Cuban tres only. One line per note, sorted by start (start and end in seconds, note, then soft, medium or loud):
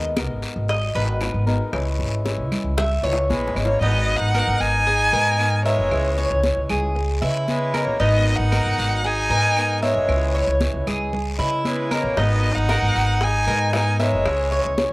0.69 0.95 D#5 medium
0.95 1.44 B4 medium
2.78 3.03 E5 medium
3.04 3.53 C#5 medium
3.82 4.33 D#4 medium
4.35 4.85 A#4 medium
4.87 5.12 G#4 medium
5.13 5.64 A#4 medium
5.66 6.16 E5 medium
6.18 6.68 C#5 medium
6.70 7.21 G#4 medium
7.22 7.73 E4 medium
7.74 7.99 A#4 medium
8.00 8.51 D#4 medium
8.52 9.03 A#4 medium
9.04 9.30 G#4 medium
9.30 9.81 A#4 medium
9.82 10.33 E5 medium
10.35 10.85 C#5 medium
10.87 11.38 G#4 medium
11.39 11.90 E4 medium
11.91 12.17 A#4 medium
12.17 12.68 D#4 medium
12.69 13.20 A#4 medium
13.22 13.47 G#4 medium
13.48 13.98 A#4 medium
14.00 14.50 E5 medium
14.52 14.93 C#5 medium